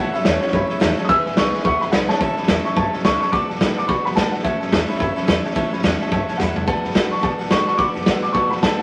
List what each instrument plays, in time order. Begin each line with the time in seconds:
Already playing: steel-string acoustic guitar A2 E3 F#3 A3, upright piano F#5
0.00 steel-string acoustic guitar C#4 A4
0.12 upright bass C#2, steel-string acoustic guitar F#3 A3 C#4 A4, upright piano C#5 E5 B5, snare
0.20 snare
0.24 upright bass E2, steel-string acoustic guitar A2 E3 F#3 A3 C#4 A4, upright piano C#5 E5 A5, snare, hi-hat pedal
0.40 steel-string acoustic guitar F#3 A3 C#4 A4, upright piano E4 C#5 E5 F#5, snare
0.47 snare
0.52 upright bass G2, steel-string acoustic guitar F#3 A3 C#4 A4, upright piano C#5 E5 B5, kick, snare
0.69 steel-string acoustic guitar F#3 A3 C#4 A4, upright piano C#5 E5 B5, muted upright bass stroke, snare
0.80 upright bass E2, steel-string acoustic guitar A2 E3 F#3 A3 C#4 A4, upright piano C#5 E5 A5, snare, hi-hat pedal
0.96 steel-string acoustic guitar F#3 A3 C#4 A4, upright piano C#5 E5 A5, muted upright bass stroke, snare
1.04 upright piano D#6, snare
1.09 upright bass E1, steel-string acoustic guitar E3 G#3 B3 C#4 G#4, upright piano B4 E5 G#5 E6, kick, snare
1.25 upright bass G#1, steel-string acoustic guitar B3 C#4 G#4, upright piano B4 E5 G#5, snare
1.32 snare
1.37 upright bass B1, steel-string acoustic guitar E3 G#3 B3 C#4 G#4, upright piano B4 E5 G#5 C#6, snare, hi-hat pedal
1.52 steel-string acoustic guitar B3 C#4 G#4, upright piano B4 E5 G#5, snare
1.60 steel-string acoustic guitar G#3, snare
1.64 upright bass D2, steel-string acoustic guitar B3 C#4 G#4, upright piano B4 E5 F#5 C#6, kick, snare
1.80 steel-string acoustic guitar B3 C#4 G#4, upright piano B4 E5 F#5 B5, muted upright bass stroke, snare
1.92 upright bass B1, steel-string acoustic guitar E3 G#3 B3 C#4 G#4, upright piano B4 F#5, snare, hi-hat pedal
2.09 steel-string acoustic guitar B3 C#4 G#4, upright piano B4 C#5 E5 G#5 A5, snare
2.19 upright bass A1, steel-string acoustic guitar A2 E3 F#3 A3 C#4 A4, upright piano C#5 E5 A5, kick, snare
2.37 upright bass C#2, steel-string acoustic guitar F#3 A3 C#4 A4, upright piano C#5 E5 B5, snare
2.43 snare
2.48 upright bass E2, steel-string acoustic guitar A2 E3 F#3 A3 C#4 A4, upright piano C#5 E5 A5, kick, snare, hi-hat pedal
2.65 steel-string acoustic guitar F#3 A3 C#4 A4, upright piano C#5 E5 A5 C#6, snare
2.76 upright bass G2, steel-string acoustic guitar F#3 A3 C#4 A4, upright piano C#5 E5 A5, kick, snare
2.93 steel-string acoustic guitar F#3 A3 C#4 A4, upright piano C#5 E5 A5, snare
2.99 snare
3.04 upright bass C#2, steel-string acoustic guitar A2 E3 F#3 A3 C#4 A4, upright piano C#5 E5 A5 C#6, kick, snare, hi-hat pedal
3.20 steel-string acoustic guitar F#3 A3 C#4 A4, upright piano C#5 E5 A5 C#6, muted upright bass stroke, snare
3.28 upright piano D5, snare
3.32 upright bass D2, steel-string acoustic guitar D3 F#3 B3 F#4 A4, upright piano F#5 A5 D6, kick, snare
3.49 upright bass F#2, steel-string acoustic guitar B3 F#4 A4, upright piano D5 F#5 A5, snare
3.56 snare
3.60 upright bass A2, steel-string acoustic guitar D3 F#3 B3 F#4 A4, upright piano D5 F#5 B5, kick, snare, hi-hat pedal
3.77 steel-string acoustic guitar B3 F#4 A4, upright piano D5 F#5 A5 D6, snare
3.87 upright bass B2, steel-string acoustic guitar F#3 B3 F#4 A4, upright piano D5 F#5 B5 C#6, kick, snare
4.05 steel-string acoustic guitar B3 F#4 A4, upright piano D5 F#5 B5, muted upright bass stroke, snare
4.11 snare
4.16 upright bass A2, steel-string acoustic guitar D3 F#3 B3 F#4 A4, upright piano D5 F#5 A5, kick, snare, hi-hat pedal
4.32 steel-string acoustic guitar B3 F#4 A4, upright piano D5 F#5 A5, muted upright bass stroke, snare
4.39 upright piano E5, snare
4.43 upright bass A1, steel-string acoustic guitar A2 E3 F#3 A3 C#4 A4, upright piano C#5 E5 A5, kick, snare
4.60 upright bass C#2, steel-string acoustic guitar F#3 A3 C#4 A4, upright piano C#5 E5 A5, snare
4.67 snare
4.72 upright bass E2, steel-string acoustic guitar A2 E3 F#3 A3 C#4 A4, upright piano C#5 E5 A5, kick, snare, hi-hat pedal
4.88 steel-string acoustic guitar F#3 A3 C#4 A4, upright piano C#5 E5 B5, snare
4.95 snare
4.99 upright bass G2, steel-string acoustic guitar F#3 A3 C#4, upright piano C#5 E5 B5, kick, snare
5.03 steel-string acoustic guitar A4
5.16 steel-string acoustic guitar F#3 A3 C#4 A4, upright piano C#5 E5 B5, muted upright bass stroke, snare
5.23 upright piano C#5, snare
5.27 upright bass E2, steel-string acoustic guitar A2 E3 F#3 A3 C#4 A4, upright piano E5 B5, kick, snare, hi-hat pedal
5.44 steel-string acoustic guitar F#3 A3 C#4 A4, upright piano C#5 E5 A5, snare
5.50 snare
5.55 upright bass A1, steel-string acoustic guitar A2 E3 F#3 A3 C#4 A4, upright piano C#5 E5 A5, kick, snare
5.71 upright bass C#2, steel-string acoustic guitar F#3 A3 C#4 A4, upright piano C#5 E5 B5, snare
5.79 snare
5.83 upright bass E2, steel-string acoustic guitar A2 E3 F#3 A3 C#4 A4, upright piano C#5 E5 F#5, kick, snare, hi-hat pedal
5.99 steel-string acoustic guitar F#3 A3 C#4 A4, upright piano C#5 E5 A5, snare
6.06 snare
6.11 upright bass G2, steel-string acoustic guitar F#3 A3 C#4 A4, upright piano C#5 E5 A5, kick, snare
6.28 steel-string acoustic guitar F#3 A3 C#4 A4, upright piano C#5 E5 A5, snare
6.34 upright piano F#5, snare
6.39 upright bass E2, steel-string acoustic guitar A2 E3 F#3 A3 C#4 A4, upright piano C#5 E5 B5, kick, snare, hi-hat pedal
6.55 steel-string acoustic guitar F#3 A3 C#4 A4, upright piano C#5 E5 A5, floor tom
6.66 upright bass D2, steel-string acoustic guitar D3 F#3 B3 F#4 A4, upright piano D5 F#5 A5, kick, snare
6.83 upright bass F#2, steel-string acoustic guitar B3 F#4 A4, upright piano D5 F#5 B5, snare
6.90 steel-string acoustic guitar D3, snare
6.94 upright bass A2, steel-string acoustic guitar F#3 B3 F#4 A4, upright piano D5 F#5 B5, kick, snare, hi-hat pedal
7.10 steel-string acoustic guitar B3 F#4 A4, upright piano D5 F#5 A5 C#6, muted upright bass stroke, snare
7.18 steel-string acoustic guitar F#3, snare
7.22 upright bass B2, steel-string acoustic guitar B3 F#4 A4, upright piano D5 F#5 A5, kick, snare
7.38 steel-string acoustic guitar B3 F#4 A4, upright piano D5 F#5 A5, muted upright bass stroke, snare
7.46 snare
7.50 upright bass A2, steel-string acoustic guitar D3 F#3 B3 F#4 A4, upright piano B5 C#6, kick, snare, hi-hat pedal
7.66 steel-string acoustic guitar B3 F#4 A4, upright piano D5 F#5 A5 C#6, muted upright bass stroke, snare
7.77 upright bass D2, steel-string acoustic guitar D3 F#3 B3 F#4 A4, upright piano D5 F#5 B5 D6, kick, snare
7.94 upright bass F#2, steel-string acoustic guitar B3 F#4 A4, upright piano D5 F#5 A5, snare
8.01 snare
8.05 upright bass A2, steel-string acoustic guitar D3 F#3 B3 F#4 A4, upright piano D5 F#5 A5, kick, snare, hi-hat pedal
8.22 steel-string acoustic guitar B3 F#4 A4, upright piano D5 F#5 A5 D6, muted upright bass stroke, snare
8.32 upright bass B2, steel-string acoustic guitar F#3 B3 F#4 A4, upright piano D5 F#5 A5 C#6, kick, snare
8.50 steel-string acoustic guitar B3 F#4 A4, upright piano D5 F#5 A5 B5, muted upright bass stroke, snare
8.57 snare
8.62 upright bass A2, steel-string acoustic guitar D3 F#3 B3 F#4 A4, upright piano D5 F#5 A5, kick, snare, hi-hat pedal
8.78 upright piano D5 F#5 A5